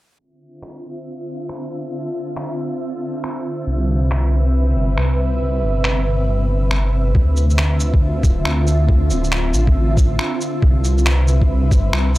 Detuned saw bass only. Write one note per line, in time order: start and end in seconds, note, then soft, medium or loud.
3.67 4.75 C2 medium
4.76 4.96 G1 medium
4.98 5.40 C2 medium
5.41 5.64 C2 medium
5.63 6.05 G1 medium
6.06 6.70 G1 medium
6.71 6.92 G1 medium
6.93 7.14 G1 medium
7.15 8.23 D2 loud
8.23 8.44 D1 medium
8.45 8.88 D2 medium
8.89 9.12 D2 medium
9.10 9.53 D1 loud
9.54 10.18 A1 medium
10.63 11.70 C2 medium
11.71 11.92 G1 medium
11.93 12.18 C2 medium